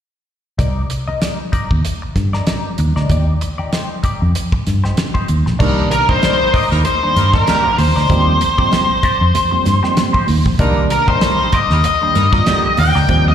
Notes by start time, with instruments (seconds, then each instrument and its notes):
0.58 fingered electric bass C2, clean electric guitar D#4 A#4 D5, kick, closed hi-hat
0.90 muted clean electric guitar stroke, closed hi-hat
1.07 clean electric guitar D#4 A#4 D#5, muted fingered electric bass stroke
1.21 clean electric guitar D#4 A#4 D5, snare, closed hi-hat
1.39 muted clean electric guitar stroke
1.52 clean electric guitar D#4 A#4 D5, muted fingered electric bass stroke, kick, closed hi-hat
1.71 fingered electric bass D#2, muted clean electric guitar stroke, kick
1.85 muted clean electric guitar stroke, closed hi-hat
2.02 muted clean electric guitar stroke
2.16 fingered electric bass G2, kick, snare, closed hi-hat
2.33 clean electric guitar D#4 A#4 D5, snare
2.47 clean electric guitar D#4 A#4 D5, snare, closed hi-hat
2.78 fingered electric bass D#2, muted clean electric guitar stroke, closed hi-hat
2.96 fingered electric bass D2, clean electric guitar D#4 A#4 D5, snare
3.10 fingered electric bass D#2, clean electric guitar D#4 G4 D5, kick, closed hi-hat
3.41 muted clean electric guitar stroke, closed hi-hat
3.58 clean electric guitar D#4 G4 D5, muted fingered electric bass stroke
3.73 clean electric guitar D#4 G4 C5, snare, closed hi-hat
3.90 muted clean electric guitar stroke
4.03 clean electric guitar D#4 G4 D5, muted fingered electric bass stroke, kick, closed hi-hat
4.21 fingered electric bass F2, muted clean electric guitar stroke
4.35 muted clean electric guitar stroke, closed hi-hat
4.52 muted clean electric guitar stroke, kick
4.67 fingered electric bass G2, snare, closed hi-hat
4.84 clean electric guitar D#4 G4 C5, snare
4.97 muted clean electric guitar stroke, snare, closed hi-hat
5.14 clean electric guitar D#4 G4 C5, kick
5.28 fingered electric bass D#2, muted clean electric guitar stroke, closed hi-hat
5.46 fingered electric bass A#1, muted clean electric guitar stroke, snare
5.59 fingered electric bass C2, tine electric piano D#3 G3 A#3 D4, horn section G3 A#3 D#4 A#4, clean electric guitar D#4 A#4 D5, kick, crash
5.91 lead electric guitar A#4, muted clean electric guitar stroke, closed hi-hat, muted conga
6.09 tine electric piano D#3 G3 A#3 D4, horn section G3 C4 D#4 C5, clean electric guitar D#4 A#4 D#5, lead electric guitar C5, muted fingered electric bass stroke, kick
6.22 horn section G3 A#3 D#4 A#4, clean electric guitar D#4 A#4 D5, snare, closed hi-hat, high conga
6.40 horn section G3 C4 D#4 C5, muted clean electric guitar stroke
6.54 tine electric piano A#3 D4, clean electric guitar D#4 A#4 D5, lead electric guitar D#5, muted fingered electric bass stroke, kick, open hi-hat
6.71 fingered electric bass D#2, horn section G3 A#3 D#4 A#4, muted clean electric guitar stroke, snare
6.85 lead electric guitar C5, muted clean electric guitar stroke, closed hi-hat, muted conga
7.03 tine electric piano D#3 G3 A#3 D4, horn section G3 C4 D#4 C5, muted clean electric guitar stroke
7.16 fingered electric bass G2, horn section G3 A#3 D#4 A#4, snare, closed hi-hat, muted conga
7.34 tine electric piano D#3 G3 A#3 D4, clean electric guitar D#4 A#4 D5, lead electric guitar A#4, kick, snare
7.47 horn section D#3 G3 D4 G4, clean electric guitar D#4 A#4 D5, snare, closed hi-hat, high conga
7.78 fingered electric bass D#2, tine electric piano A#3 F4, lead electric guitar C5, muted clean electric guitar stroke, open hi-hat, high conga
7.96 fingered electric bass D2, tine electric piano A#3 D4, clean electric guitar D#4 A#4 D5, snare
8.09 fingered electric bass D#2, tine electric piano F3 G3 A#3 C4, clean electric guitar D#4 G4 D5, kick, closed hi-hat, muted conga
8.40 muted clean electric guitar stroke, closed hi-hat, muted conga
8.58 tine electric piano F3 G3 A#3 C4, clean electric guitar D#4 G4 D5, muted fingered electric bass stroke, kick
8.72 clean electric guitar D#4 G4 C5, snare, closed hi-hat, high conga
8.90 muted clean electric guitar stroke
9.03 tine electric piano A#3 C4, clean electric guitar D#4 G4 D5, muted fingered electric bass stroke, kick, closed hi-hat
9.21 fingered electric bass F2, muted clean electric guitar stroke
9.35 muted clean electric guitar stroke, closed hi-hat, muted conga, low conga
9.51 tine electric piano F3 G3 A#3 C4, muted clean electric guitar stroke, muted fingered electric bass stroke
9.65 fingered electric bass G2, snare, closed hi-hat, muted conga
9.83 tine electric piano F3 G3 A#3 C4, clean electric guitar D#4 G4 C5, snare
9.96 muted clean electric guitar stroke, snare, closed hi-hat, high conga
10.13 clean electric guitar D#4 G4 C5, kick
10.27 fingered electric bass D#2, tine electric piano A#3 D#4, muted clean electric guitar stroke, open hi-hat, high conga
10.46 fingered electric bass A#1, tine electric piano A#3 C4, muted clean electric guitar stroke, kick, snare
10.59 fingered electric bass C2, tine electric piano D#3 G3 A#3 D4, horn section G3 A#3 D#4 A#4, clean electric guitar D#4 A#4 D5, kick, closed hi-hat
10.90 lead electric guitar A#4, muted clean electric guitar stroke, closed hi-hat, muted conga
11.08 tine electric piano D#3 G3 A#3 D4, horn section G3 C4 D#4 C5, clean electric guitar D#4 A#4 D#5, lead electric guitar C5, muted fingered electric bass stroke, kick
11.21 horn section G3 A#3 D#4 A#4, clean electric guitar D#4 A#4 D5, snare, closed hi-hat, high conga
11.39 horn section G3 C4 D#4 C5, muted clean electric guitar stroke
11.52 tine electric piano A#3 D4, clean electric guitar D#4 A#4 D5, lead electric guitar D#5, muted fingered electric bass stroke, kick, closed hi-hat
11.70 fingered electric bass D#2, horn section G3 A#3 D#4 A#4, muted clean electric guitar stroke, snare
11.84 lead electric guitar D#5, muted clean electric guitar stroke, closed hi-hat, muted conga
12.02 tine electric piano D#3 G3 A#3 D4, horn section G3 C4 D#4 C5, muted clean electric guitar stroke
12.15 fingered electric bass G2, horn section G3 A#3 D#4 A#4, snare, closed hi-hat, muted conga
12.32 tine electric piano D#3 G3 A#3 F4, clean electric guitar D#4 A#4 D5, kick, snare
12.46 horn section D3 D#3 G3 G4, clean electric guitar D#4 A#4 D5, snare, closed hi-hat, high conga
12.77 fingered electric bass D#2, tine electric piano A#3 D4, lead electric guitar G5, muted clean electric guitar stroke, open hi-hat, high conga
12.95 fingered electric bass D2, tine electric piano A#3 F4, clean electric guitar D#4 A#4 D5, snare
13.08 fingered electric bass D#2, tine electric piano F3 G3 A#3 C4, clean electric guitar D#4 G4 D5, kick, closed hi-hat, muted conga
13.28 lead electric guitar D#5